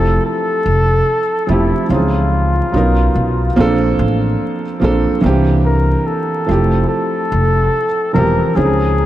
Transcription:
0.00 0.17 F1 loud
0.00 1.18 F3 medium
0.00 1.19 A3 medium
0.00 1.19 C4 medium
0.00 1.20 E4 medium
0.00 1.20 G4 medium
0.00 0.24 A4 loud
0.26 1.51 A4 loud
0.66 1.00 F1 loud
1.47 1.70 E1 loud
1.47 1.83 F3 medium
1.47 1.84 A3 medium
1.47 1.84 C4 medium
1.47 1.92 E4 loud
1.47 1.85 E4 medium
1.51 1.85 G4 medium
1.89 2.60 C#2 medium
1.89 1.97 E3 medium
1.89 2.73 C4 medium
1.89 2.73 C#4 medium
1.89 2.74 D#4 medium
1.89 4.40 F4 medium
1.94 2.76 F3 medium
1.94 2.75 G#4 medium
2.72 3.08 B1 medium
2.72 3.44 F#3 medium
2.72 3.45 B3 medium
2.72 3.45 C#4 medium
2.72 3.46 D#4 medium
2.77 3.47 A#4 medium
3.15 3.50 B1 medium
3.56 3.92 A#1 loud
3.56 4.62 F3 loud
3.56 4.62 A#3 loud
3.56 4.63 C4 medium
3.56 4.64 D4 loud
3.60 4.64 A4 loud
3.99 4.34 A1 medium
4.80 5.04 A#1 medium
4.80 5.16 F3 medium
4.80 5.17 A#3 medium
4.80 5.18 C4 medium
4.80 5.18 D4 loud
4.84 5.19 A4 loud
5.21 5.93 C2 medium
5.21 6.47 E3 loud
5.21 6.48 A#3 medium
5.21 6.47 C4 medium
5.21 6.49 D4 medium
5.26 6.49 G4 loud
5.65 6.08 A#4 medium
6.06 6.88 A4 medium
6.46 6.83 F1 loud
6.46 7.85 F3 medium
6.46 7.85 A3 medium
6.46 7.86 C4 medium
6.46 7.86 E4 medium
6.51 7.87 G4 medium
6.89 8.10 A4 loud
7.32 7.67 F1 loud
8.13 8.37 E1 medium
8.13 8.50 E3 medium
8.13 8.49 F3 medium
8.13 8.51 C4 medium
8.13 8.51 E4 medium
8.13 8.57 A#4 loud
8.17 8.52 G4 medium
8.54 9.06 C#2 medium
8.54 9.06 F3 medium
8.54 9.06 C4 medium
8.54 9.06 C#4 medium
8.54 9.06 D#4 medium
8.54 9.06 G#4 loud
8.59 9.06 G#4 medium

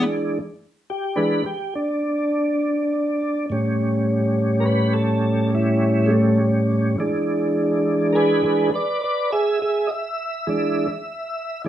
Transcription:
0.00 0.39 E3 soft
0.00 0.39 G#3 soft
0.00 0.39 D4 medium
0.90 1.17 G4 medium
1.16 1.43 E3 soft
1.16 1.43 G#3 soft
1.16 1.42 D4 soft
1.16 1.44 B4 medium
1.46 1.74 G4 medium
1.75 3.46 D4 medium
3.50 6.95 A2 medium
3.50 6.38 G3 soft
3.50 6.96 C#4 medium
4.60 4.64 A#4 medium
4.65 4.94 B4 medium
4.93 5.51 A4 medium
5.55 6.10 E4 medium
6.06 6.10 G#3 medium
6.10 6.39 A3 medium
6.39 6.96 G3 medium
6.98 8.42 E3 soft
6.98 8.43 G#3 soft
6.98 8.42 D4 medium
8.13 8.42 G#4 medium
8.13 8.16 A#4 medium
8.13 8.44 B4 medium
8.43 8.70 E3 soft
8.43 8.71 G#3 soft
8.43 8.70 D4 soft
8.43 8.71 G#4 medium
8.43 8.73 B4 medium
8.74 9.01 B4 medium
8.74 9.02 D5 medium
9.03 9.30 B4 medium
9.03 9.31 D5 medium
9.32 9.59 G#4 medium
9.32 9.61 E5 medium
9.62 9.89 G#4 medium
9.62 9.90 E5 medium
9.87 9.90 D#5 medium
9.91 11.62 E5 medium
10.47 10.87 E3 soft
10.47 10.87 G#3 soft
10.47 10.88 D4 medium
11.64 11.69 E3 soft
11.64 11.69 G#3 soft

